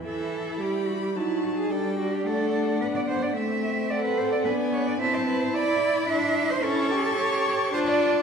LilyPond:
<<
  \new Staff \with { instrumentName = "Violin" } { \time 3/4 \key a \dorian \tempo 4 = 109 e''4 b''4 a''4 | g''4 fis''2 | e''4 fis''4 gis''4 | a''4 b''4 c'''4 |
\key a \phrygian cis'''2 a''4 | }
  \new Staff \with { instrumentName = "Cello" } { \time 3/4 \key a \dorian a'4 g'8 fis'16 g'16 e'8 fis'16 gis'16 | a'8 fis'16 g'16 a'4 b'16 d''16 c''16 d''16 | e''4 d''16 b'16 c''16 d''16 b'8 cis''16 d''16 | e''16 c''16 b'16 c''16 d''4 e''8. c''16 |
\key a \phrygian a'2 c''16 d''8. | }
  \new Staff \with { instrumentName = "Violin" } { \time 3/4 \key a \dorian e'2 dis'4 | d'2. | c'2 d'4 | e'2. |
\key a \phrygian e'8 g'4. f'4 | }
  \new Staff \with { instrumentName = "Viola" } { \time 3/4 \key a \dorian e4 g4 fis4 | g4 a4 b4 | a4 a'4 b4 | c'4 e'4 d'4 |
\key a \phrygian cis'4 cis''4 d'4 | }
>>